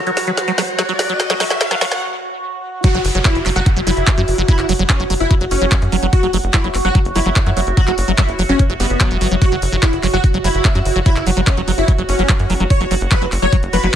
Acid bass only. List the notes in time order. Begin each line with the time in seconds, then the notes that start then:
0.07 F#3
0.27 F#3
0.48 F#3
0.58 F#3
0.79 F#3
0.89 F#3
1.09 F#3
1.30 F#3
1.40 F#3
1.71 F#3
1.81 F#3
2.84 F#3
2.94 F#3
3.15 F#3
3.25 F#3
3.46 F#3
3.56 F#3
3.77 F#3
3.87 F#3
4.07 F#3
4.18 F#3
4.38 F#3
4.48 F#3
4.69 F#3
4.79 F#3
5.00 F#3
5.10 F#3
5.31 F#3
5.41 F#3
5.62 F#3
5.72 F#3
5.92 F#3
6.03 F#3
6.23 F#3
6.33 F#3
6.54 F#3
6.64 F#3
6.85 F#3
6.95 F#3
7.16 F#3
7.26 F#3
7.46 F#3
7.57 F#3
7.77 F#3
7.87 F#3
8.08 F#3
8.18 F#3
8.39 F#3
8.49 F#3
8.70 F#3
8.80 G3
9.00 F#3
9.11 F#3
9.21 F#3
9.31 F#3
9.42 F#3
9.52 F#3
9.72 F#3
9.83 F#3
10.03 F#3
10.14 F#3
10.34 F#3
10.44 F#3
10.65 F#3
10.75 F#3
10.96 F#3
11.06 F#3
11.27 F#3
11.37 F#3
11.57 F#3
11.68 F#3
11.88 F#3
11.98 F#3
12.19 F#3
12.29 F#3
12.50 F#3
12.60 F#3
12.81 F#3
12.91 F#3
13.11 F#3
13.22 F#3
13.42 F#3
13.53 F#3
13.73 F#3
13.83 F#3